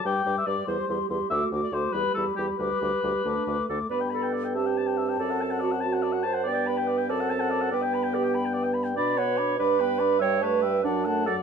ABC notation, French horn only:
X:1
M:6/8
L:1/8
Q:3/8=95
K:G
V:1 name="French horn"
G, G, G, G, G, G, | A, A, A, G, G, G, | G, G, G, A, A, A, | B,3 C3- |
C6 | B,3 C3 | B,6 | [K:D] D B, D D B, D |
G, A, G, F, A, F, |]